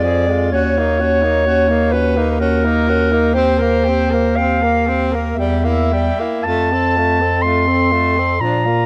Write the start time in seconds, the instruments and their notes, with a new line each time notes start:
Already playing: bass clarinet F2, clarinet D5
0.03 tenor saxophone F3, alto saxophone G#4
0.27 tenor saxophone G#3, alto saxophone F4
0.52 bass clarinet D#2, tenor saxophone C#4, alto saxophone F#4, clarinet C#5
0.78 tenor saxophone A#3, alto saxophone D#4
1.00 tenor saxophone C#4, alto saxophone F#4
1.22 tenor saxophone A#3, alto saxophone D#4
1.46 tenor saxophone C#4, alto saxophone F#4
1.68 tenor saxophone A#3, alto saxophone D#4
1.92 tenor saxophone C#4, alto saxophone F#4, clarinet B4
2.16 tenor saxophone A#3, alto saxophone D#4
2.32 clarinet B4
2.39 tenor saxophone C#4, alto saxophone F#4, clarinet A#4
2.65 tenor saxophone A#3, alto saxophone D#4
2.88 tenor saxophone C#4, alto saxophone F#4
3.12 tenor saxophone A#3, alto saxophone D#4
3.34 tenor saxophone C4, alto saxophone G4, clarinet C5
3.58 tenor saxophone A#3, alto saxophone A#4
3.84 alto saxophone G4
3.89 tenor saxophone C4
4.11 tenor saxophone A#3, alto saxophone A#4
4.36 tenor saxophone C4, alto saxophone G4, clarinet F5
4.62 tenor saxophone A#3, alto saxophone A#4
4.87 tenor saxophone C4, alto saxophone G4
5.13 tenor saxophone A#3, alto saxophone A#4
5.35 bass clarinet E2, tenor saxophone G3, alto saxophone G4, clarinet E5
5.64 tenor saxophone A#3, alto saxophone E4
5.92 tenor saxophone G3, alto saxophone G4
6.19 tenor saxophone A#3, alto saxophone E4
6.42 bass clarinet F2, alto saxophone F4, clarinet A5
6.47 tenor saxophone A3
6.72 tenor saxophone C4, alto saxophone A4
6.97 tenor saxophone A3, alto saxophone F4
7.20 tenor saxophone C4, alto saxophone A4
7.42 tenor saxophone A3, alto saxophone F4, clarinet C6
7.68 tenor saxophone C4, alto saxophone A4
7.92 tenor saxophone A3, alto saxophone F4
8.17 tenor saxophone C4, alto saxophone A4
8.40 bass clarinet A#2, tenor saxophone F3, alto saxophone D4, clarinet A#5
8.65 tenor saxophone A#3, alto saxophone F4